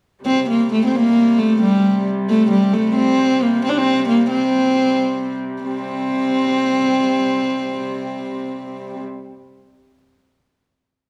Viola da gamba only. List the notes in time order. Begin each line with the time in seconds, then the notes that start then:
0.26 C4
0.50 A#3
0.72 A3
0.85 C4
0.96 A#3
1.38 A3
1.62 G3
2.29 A3
2.51 G3
2.73 A3
2.95 C4
3.42 A#3
3.64 C4
3.69 D4
3.78 C4
4.09 A#3
4.30 C4
5.63 C4